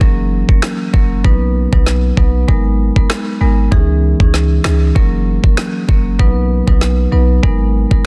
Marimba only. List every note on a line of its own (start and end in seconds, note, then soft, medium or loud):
0.01 0.23 F#3 medium
0.01 0.23 A#3 medium
0.01 0.23 C#4 medium
0.01 0.23 A#4 loud
0.49 0.69 F#3 medium
0.49 0.69 A#3 medium
0.49 0.69 C#4 medium
0.49 0.69 A#4 medium
0.93 1.16 F#3 medium
0.93 1.16 A#3 medium
0.93 1.16 C#4 medium
0.93 1.16 A#4 medium
1.24 1.69 F#3 medium
1.24 1.69 B3 medium
1.24 1.69 D#4 medium
1.24 1.69 B4 medium
1.73 1.92 F#3 medium
1.73 1.93 B3 medium
1.73 1.93 D#4 medium
1.73 1.93 B4 medium
2.17 2.39 F#3 medium
2.17 2.40 B3 medium
2.17 2.40 D#4 medium
2.17 2.40 B4 medium
2.48 2.70 G#3 medium
2.48 2.70 B3 medium
2.48 2.70 D#4 medium
2.48 2.70 A#4 medium
2.96 3.16 G#3 medium
2.96 3.16 B3 medium
2.96 3.16 D#4 medium
2.96 3.16 A#4 medium
3.41 3.63 G#3 medium
3.41 3.63 B3 medium
3.41 3.63 D#4 medium
3.41 3.63 A#4 medium
3.72 4.16 E3 medium
3.72 4.16 C#4 medium
3.72 4.16 D#4 medium
3.72 4.16 G#4 medium
4.20 4.40 E3 medium
4.20 4.40 C#4 medium
4.20 4.40 D#4 medium
4.20 4.40 G#4 medium
4.65 4.87 E3 medium
4.65 4.87 C#4 medium
4.65 4.87 D#4 medium
4.65 4.87 G#4 medium
4.95 5.18 F#3 medium
4.95 5.18 A#3 medium
4.95 5.18 C#4 medium
4.95 5.18 A#4 loud
5.44 5.63 F#3 medium
5.44 5.64 A#3 medium
5.44 5.64 C#4 medium
5.44 5.64 A#4 medium
5.88 6.10 F#3 medium
5.88 6.11 A#3 medium
5.88 6.11 C#4 medium
5.88 6.11 A#4 medium
6.19 6.63 F#3 medium
6.19 6.63 B3 medium
6.19 6.64 D#4 medium
6.19 6.64 B4 medium
6.67 6.87 F#3 medium
6.67 6.87 B3 medium
6.67 6.87 D#4 medium
6.67 6.88 B4 medium
7.12 7.34 F#3 medium
7.12 7.34 B3 medium
7.12 7.34 D#4 medium
7.12 7.34 B4 medium
7.43 7.65 G#3 medium
7.43 7.65 B3 medium
7.43 7.65 D#4 medium
7.43 7.65 A#4 loud
7.91 8.06 G#3 medium
7.91 8.06 B3 medium
7.91 8.06 D#4 medium
7.91 8.06 A#4 medium